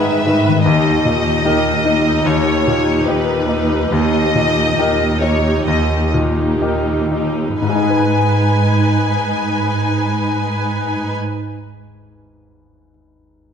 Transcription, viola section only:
Already playing: D#3 B4
0.26 D#3 B4
0.67 D#4 G4
1.06 D#4 G4
1.86 D#4 G4
2.66 D#4 G4
3.49 D#4 G4
4.35 D#4 G4
5.22 D#4 G4
6.14 D#4 G4
7.12 D#4 G4
7.62 D#4 B4

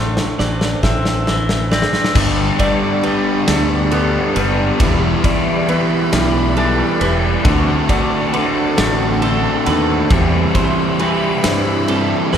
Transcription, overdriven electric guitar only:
2.15 G2 D3 G3 B3 D4
2.59 G3 B3 D4
3.03 D3 G3 B3 D4
3.47 G3 B3 D4
3.92 D3 G3 B3 D4
4.36 G3 B3 D4
4.80 E3 G3 B3 E4
5.24 G3 B3 E4
5.68 E3 G3 B3 E4
6.12 G3 B3 E4
6.56 E3 G3 B3 E4
7.01 G3 B3 E4
7.45 D3 A3 C4 F#4
7.89 A3 C4 F#4
8.33 D3 A3 C4 F#4
8.78 A3 C4 F#4
9.22 D3 A3 C4 F#4
9.66 A3 C4 F#4
10.10 E3 G3 C4 E4
10.55 G3 C4 E4
11.00 E3 G3 C4 E4
11.44 G3 C4 E4
11.88 E3 G3 C4 E4
12.33 C4 E4

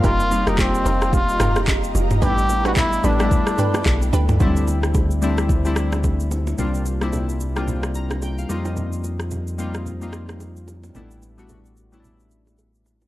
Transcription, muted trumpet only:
0.05 F4
0.48 D#4
0.60 C4
1.14 F4
2.23 G4
2.66 F#4
2.78 E4
3.05 D4

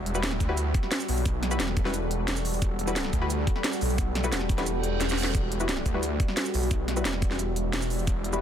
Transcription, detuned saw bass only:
Already playing: E1
0.40 D2
1.08 B1
1.60 E1
2.62 E1
3.13 D2
3.81 B1
4.32 E1
5.35 E1
5.86 D2
6.54 B1
7.05 E1
8.07 E1

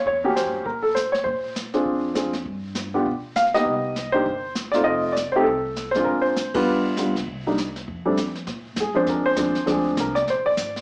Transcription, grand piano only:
0.07 C#5
0.24 A#3 C#4 F#4 G4
0.36 C5
0.66 A#4
0.83 A4
0.95 C5
1.12 C#5
1.24 C5
1.74 C4 D4 F4 G#4
2.14 C4 D4 F4 G#4
2.94 B3 D4 F4 G4
3.36 F5
3.54 A#3 B3 D#4 G4 D#5
4.12 A#3 D4 D#4 G4 C5
4.72 A3 C4 D#4 F4 D5
4.84 D#5
5.12 D5
5.32 A3 C4 D#4 C5
5.36 G4
5.43 A4
5.91 C5
5.96 G#3 C4 D4 F4
6.04 A#4
6.22 C5
6.54 G3 B3 D4 F4 B4
6.98 G3 B3 D4 F4
7.47 G3 A#3 D4 D#4
8.05 G3 A3 C4 D4
8.80 G#4
8.95 F3 G#3 C4 D4 C5
9.09 A#4
9.26 C5
9.37 F3 G#3 C4 D4
9.66 F3 G#3 C4 D4
9.70 G#4
10.00 A#4
10.15 D5
10.30 C5
10.46 D5

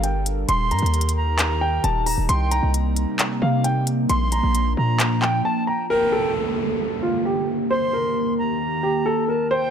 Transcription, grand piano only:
0.04 G5
0.49 C6
0.71 A#5
1.61 G5
1.84 A5
2.06 A#5
2.29 C6
2.52 A#5
3.42 F5
3.64 G5
4.10 C6
4.32 A#5
5.22 G5
5.45 A5
5.67 A#5
5.90 A#4
6.12 A4
7.03 F4
7.25 G4
7.71 C5
7.93 A#4
8.83 G4
9.06 A4
9.28 A#4
9.51 C5

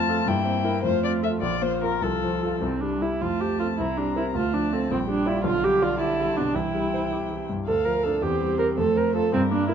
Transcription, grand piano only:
Already playing: F2 C4
0.09 F4 A4
0.26 G2
0.45 C4
0.64 E4 A#4
0.83 F2
1.03 C4
1.22 F4 A4
1.42 A#1
1.62 A#3
1.82 F4 A#4
2.02 C2
2.23 F3
2.43 F4 A4
2.62 C2
2.83 G3
3.02 E4 G4
3.21 F2
3.40 F3
3.60 C4 A4
3.79 C2
3.98 G3
4.16 C4 A#4
4.35 D2
4.54 F3
4.73 F4 A4
4.91 A#1
5.08 G3
5.26 F4 D5
5.44 B1
5.63 G3
5.82 D5
6.01 G4
6.19 G3
6.37 B2
6.55 C2
6.75 G3
6.94 C5
7.12 G4
7.31 G3
7.49 G2
7.68 D2
7.86 F3
8.06 D4 A4
8.22 E2
8.41 G3
8.59 G4 C5
8.78 F2
8.95 C4
9.15 F4 A4
9.33 G2
9.52 A#3
9.69 E4 A#4

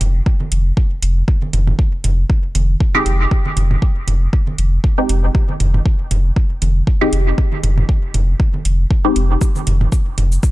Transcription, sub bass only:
0.01 F1
0.52 F1
1.02 F1
1.53 F1
2.04 F1
2.55 F1
3.06 F1
3.57 F1
4.07 F1
4.58 F1
5.09 F1
5.60 F1
6.11 F1
6.62 F1
7.12 F1
7.63 F1
8.14 F1
8.65 F1
9.16 F1
9.67 F1
10.18 F1

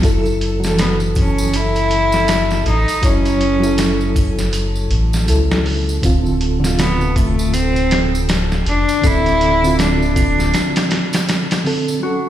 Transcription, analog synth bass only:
0.04 F#1
2.66 A1
3.03 F#1
4.91 A1
5.28 C#2
6.03 D1
8.66 F1
9.04 D1

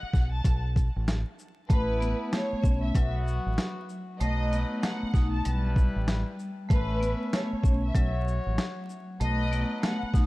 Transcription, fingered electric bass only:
0.03 muted fingered electric bass stroke
0.14 B1
0.45 B1
0.96 A1
1.70 A1
2.53 muted fingered electric bass stroke
2.64 B1
2.95 B1
3.46 A1
4.21 B1
5.03 muted fingered electric bass stroke
5.14 B1
5.46 B1
5.96 A1
6.70 A1
7.53 muted fingered electric bass stroke
7.64 B1
7.95 B1
8.46 A1
9.21 B1
10.03 muted fingered electric bass stroke
10.14 B1

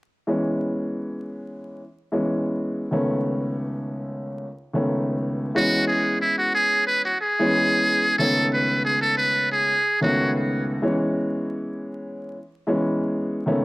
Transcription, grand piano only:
0.27 E3 G#3 B3 C#4
2.12 E3 G#3 B3 C#4
2.91 C#2 D#3 A3 B3 C#4
4.73 C#2 D#3 A3 B3 C#4
5.55 E3 G#3 B3 C#4
7.39 E3 G#3 B3 C#4
8.18 C#2 D#3 A3 B3 C#4
10.01 C#2 D#3 A3 B3 C#4
10.82 E3 G#3 B3 C#4
12.67 E3 G#3 B3 C#4
13.46 C#2 D#3 A3 B3 C#4

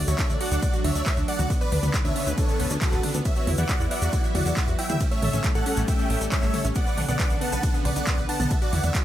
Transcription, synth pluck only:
0.08 F#4
0.19 D4
0.30 D5
0.41 F#4
0.52 D4
0.62 D5
0.73 F#4
0.84 D4
0.95 D5
1.06 F#4
1.17 D4
1.28 D5
1.39 F#4
1.50 B3
1.61 B4
1.72 D4
1.83 B3
1.94 B4
2.05 D4
2.16 B3
2.27 B4
2.38 D4
2.49 B3
2.60 B4
2.70 D4
2.81 B3
2.92 B4
3.03 D4
3.14 B3
3.25 E5
3.36 F#4
3.47 E4
3.58 E5
3.69 F#4
3.80 E4
3.91 E5
4.02 F#4
4.13 E4
4.24 E5
4.35 F#4
4.46 E4
4.57 E5
4.68 F#4
4.79 E4
4.90 E5
5.01 C#4
5.11 A3
5.22 A4
5.33 C#4
5.44 A3
5.55 A4
5.66 C#4
5.77 A3
5.88 A4
5.99 C#4
6.10 A3
6.21 A4
6.32 C#4
6.43 A3
6.54 A4
6.65 C#4
6.76 B3
6.87 B4
6.97 D4
7.08 B3
7.19 B4
7.30 D4
7.41 B3
7.52 B4
7.63 D4
7.74 B3
7.85 B4
7.96 D4
8.07 B3
8.18 B4
8.29 D4
8.40 B3
8.51 E5
8.62 F#4
8.73 E4
8.84 E5
8.95 F#4

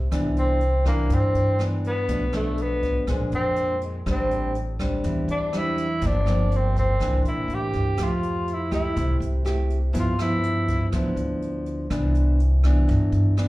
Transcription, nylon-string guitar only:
0.11 C3 E3 B3 D4
0.86 E3 D4
1.10 G2
1.59 E3 B3 D4
2.08 B2 F3 A3 D4
2.33 F3 A3 D4
3.08 A#2 G#3 C4 D4
4.06 A2 G3 C4 D4
4.79 G3 C4 D4
5.05 E3
5.53 G3 C4 D4
6.02 G2 F3 A#3 C4
6.26 F3 A#3 C4
7.00 C3 E3 A#3 D4
7.97 F3 A3 G4
8.71 A3 E4 G4
8.96 C3
9.45 A3 E4 G4
9.93 G2 F3 B3 E4
10.19 F3 B3 E4
10.92 D3 F3 B3 E4
11.91 C3 E3 B3 D4
12.64 E3 B3 D4
12.88 G2
13.37 E3 B3 D4

